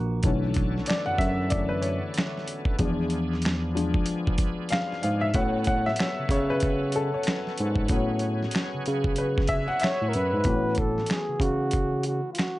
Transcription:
Already playing: tine electric piano A#1, upright piano E3 G#3 A#3, clean electric guitar A#3 F#4
0.23 tine electric piano B1, tonewheel organ D3 B3 C#4 A4, upright piano D3 E3 A3 C#4, kick, closed hi-hat
0.54 kick, closed hi-hat
0.78 snare
0.86 upright piano D5, finger snap, closed hi-hat
0.90 snare
1.06 tine electric piano F#2, upright piano F#5
1.18 tine electric piano F#2, upright piano E5, kick, closed hi-hat
1.50 upright piano D3 E3 A3 C#4 D5, kick, closed hi-hat
1.69 upright piano B4
1.82 upright piano C#5, closed hi-hat
2.14 finger snap, closed hi-hat
2.18 snare
2.38 snare
2.48 closed hi-hat
2.65 kick
2.79 tine electric piano E2, upright piano F3 G#3 D4, tonewheel organ F3 D4 G#4, kick, closed hi-hat
3.10 closed hi-hat
3.33 snare
3.42 finger snap, closed hi-hat
3.46 snare
3.75 upright piano F3 G#3 D4, closed hi-hat
3.94 kick
4.06 closed hi-hat
4.27 kick
4.38 kick, closed hi-hat
4.69 upright piano F5, finger snap, closed hi-hat
4.73 snare
4.92 snare
5.02 tine electric piano G#2, upright piano F5, closed hi-hat
5.21 upright piano E5
5.34 tine electric piano A2, upright piano F#3 B3 C#4 F#5, tonewheel organ F#3 B3 C#4 A4, kick, closed hi-hat
5.64 upright piano F#5, kick, closed hi-hat
5.86 upright piano E5, snare
5.96 upright piano C#5, finger snap, closed hi-hat
6.00 snare
6.19 tine electric piano C#3
6.29 tine electric piano C#3, upright piano C#5, kick, closed hi-hat
6.50 upright piano B4
6.60 kick, closed hi-hat
6.92 upright piano A4, closed hi-hat
7.14 upright piano C#5
7.23 finger snap, closed hi-hat
7.28 snare
7.47 snare
7.58 tine electric piano G#2, closed hi-hat
7.76 kick
7.88 tine electric piano A2, upright piano F#3 B3 C#4, tonewheel organ G#4, kick, closed hi-hat
8.19 closed hi-hat
8.43 snare
8.51 finger snap, closed hi-hat
8.56 snare
8.74 tine electric piano C#3
8.86 tine electric piano C#3, closed hi-hat
9.04 kick
9.16 upright piano B4, closed hi-hat
9.38 kick, snare
9.47 upright piano E5, kick, closed hi-hat
9.68 upright piano F#5
9.80 flugelhorn C#5, upright piano E5, finger snap, closed hi-hat
9.84 snare
10.02 tine electric piano A2
10.09 flugelhorn A#4
10.13 tine electric piano F#2, flugelhorn B4, closed hi-hat
10.33 tine electric piano G#2
10.44 tine electric piano A2, upright piano E3 A3 B3 C4 F#4, kick, closed hi-hat
10.53 upright piano C#4
10.75 kick, closed hi-hat
10.79 flugelhorn A4
10.98 snare
11.06 finger snap, closed hi-hat
11.11 flugelhorn G#4, snare
11.29 tine electric piano C#3
11.40 tine electric piano C#3, flugelhorn F#4, kick, closed hi-hat
11.71 kick, closed hi-hat
12.03 flugelhorn F#4, closed hi-hat
12.33 flugelhorn F4, closed hi-hat
12.38 flugelhorn F#4, finger snap, snare

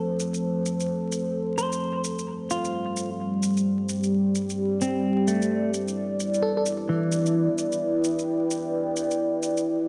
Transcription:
Already playing: ambient pad F3 A4 C5
0.20 shaker
0.34 shaker
0.66 shaker
0.80 shaker
1.12 shaker
1.58 clean electric guitar C5, shaker
1.72 shaker
1.82 ambient pad G3
2.04 shaker
2.19 shaker
2.34 ambient pad G4
2.50 clean electric guitar F4, shaker
2.55 ambient pad D5
2.65 shaker
2.97 shaker
3.43 shaker
3.57 shaker
3.89 shaker
4.03 shaker
4.35 shaker
4.50 shaker
4.81 clean electric guitar C4, shaker
5.28 clean electric guitar A3, shaker
5.42 shaker
5.50 ambient pad E4
5.59 ambient pad B4
5.74 shaker
5.88 shaker
6.20 shaker
6.34 shaker
6.42 fm electric piano A4
6.57 fm electric piano A4
6.66 shaker
6.89 clean electric guitar E3
7.12 shaker
7.18 ambient pad G5
7.26 shaker
7.58 shaker
7.72 shaker
8.04 shaker
8.19 shaker
8.51 shaker
8.96 shaker
9.11 shaker
9.19 ambient pad F4
9.43 shaker
9.57 shaker

